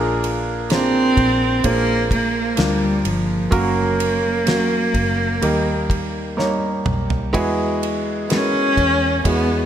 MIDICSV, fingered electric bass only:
0, 0, Header, 1, 2, 480
1, 0, Start_track
1, 0, Tempo, 940439
1, 1799, Time_signature, 4, 2, 24, 8
1, 1800, Tempo, 953895
1, 4884, End_track
2, 0, Start_track
2, 0, Title_t, "Fingered electric bass"
2, 0, Program_c, 0, 33
2, 0, Note_on_c, 0, 34, 121
2, 580, Note_off_c, 0, 34, 0
2, 600, Note_on_c, 0, 34, 108
2, 823, Note_off_c, 0, 34, 0
2, 838, Note_on_c, 0, 34, 96
2, 1297, Note_off_c, 0, 34, 0
2, 1318, Note_on_c, 0, 38, 107
2, 1541, Note_off_c, 0, 38, 0
2, 1554, Note_on_c, 0, 31, 91
2, 1781, Note_off_c, 0, 31, 0
2, 1799, Note_on_c, 0, 30, 115
2, 2495, Note_off_c, 0, 30, 0
2, 2512, Note_on_c, 0, 30, 86
2, 2736, Note_off_c, 0, 30, 0
2, 2754, Note_on_c, 0, 39, 86
2, 3459, Note_off_c, 0, 39, 0
2, 3476, Note_on_c, 0, 35, 78
2, 3720, Note_off_c, 0, 35, 0
2, 3720, Note_on_c, 0, 40, 95
2, 4420, Note_off_c, 0, 40, 0
2, 4440, Note_on_c, 0, 40, 104
2, 4663, Note_off_c, 0, 40, 0
2, 4681, Note_on_c, 0, 40, 94
2, 4884, Note_off_c, 0, 40, 0
2, 4884, End_track
0, 0, End_of_file